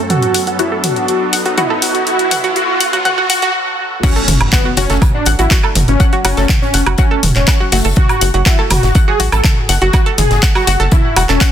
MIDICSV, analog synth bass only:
0, 0, Header, 1, 2, 480
1, 0, Start_track
1, 0, Key_signature, 3, "minor"
1, 0, Tempo, 491803
1, 98, Time_signature, 4, 2, 24, 8
1, 11242, End_track
2, 0, Start_track
2, 0, Title_t, "Analog synth bass"
2, 0, Program_c, 0, 38
2, 4177, Note_on_c, 0, 30, 99
2, 4271, Note_off_c, 0, 30, 0
2, 4300, Note_on_c, 0, 30, 81
2, 4390, Note_off_c, 0, 30, 0
2, 4657, Note_on_c, 0, 30, 97
2, 4751, Note_off_c, 0, 30, 0
2, 4779, Note_on_c, 0, 30, 82
2, 4869, Note_off_c, 0, 30, 0
2, 5137, Note_on_c, 0, 33, 96
2, 5231, Note_off_c, 0, 33, 0
2, 5260, Note_on_c, 0, 33, 87
2, 5350, Note_off_c, 0, 33, 0
2, 5617, Note_on_c, 0, 30, 98
2, 5711, Note_off_c, 0, 30, 0
2, 5740, Note_on_c, 0, 30, 83
2, 5829, Note_off_c, 0, 30, 0
2, 6097, Note_on_c, 0, 30, 96
2, 6191, Note_off_c, 0, 30, 0
2, 6220, Note_on_c, 0, 30, 81
2, 6309, Note_off_c, 0, 30, 0
2, 6577, Note_on_c, 0, 30, 97
2, 6671, Note_off_c, 0, 30, 0
2, 6700, Note_on_c, 0, 30, 82
2, 6790, Note_off_c, 0, 30, 0
2, 7057, Note_on_c, 0, 28, 95
2, 7151, Note_off_c, 0, 28, 0
2, 7181, Note_on_c, 0, 28, 86
2, 7270, Note_off_c, 0, 28, 0
2, 7538, Note_on_c, 0, 30, 97
2, 7631, Note_off_c, 0, 30, 0
2, 7660, Note_on_c, 0, 30, 83
2, 7750, Note_off_c, 0, 30, 0
2, 8018, Note_on_c, 0, 30, 97
2, 8111, Note_off_c, 0, 30, 0
2, 8140, Note_on_c, 0, 30, 83
2, 8230, Note_off_c, 0, 30, 0
2, 8497, Note_on_c, 0, 30, 95
2, 8591, Note_off_c, 0, 30, 0
2, 8620, Note_on_c, 0, 30, 82
2, 8710, Note_off_c, 0, 30, 0
2, 8978, Note_on_c, 0, 33, 94
2, 9071, Note_off_c, 0, 33, 0
2, 9100, Note_on_c, 0, 33, 85
2, 9190, Note_off_c, 0, 33, 0
2, 9457, Note_on_c, 0, 30, 99
2, 9551, Note_off_c, 0, 30, 0
2, 9580, Note_on_c, 0, 30, 83
2, 9670, Note_off_c, 0, 30, 0
2, 9937, Note_on_c, 0, 30, 98
2, 10031, Note_off_c, 0, 30, 0
2, 10060, Note_on_c, 0, 30, 83
2, 10150, Note_off_c, 0, 30, 0
2, 10417, Note_on_c, 0, 30, 96
2, 10511, Note_off_c, 0, 30, 0
2, 10540, Note_on_c, 0, 30, 83
2, 10630, Note_off_c, 0, 30, 0
2, 10896, Note_on_c, 0, 28, 93
2, 10991, Note_off_c, 0, 28, 0
2, 11020, Note_on_c, 0, 28, 86
2, 11110, Note_off_c, 0, 28, 0
2, 11242, End_track
0, 0, End_of_file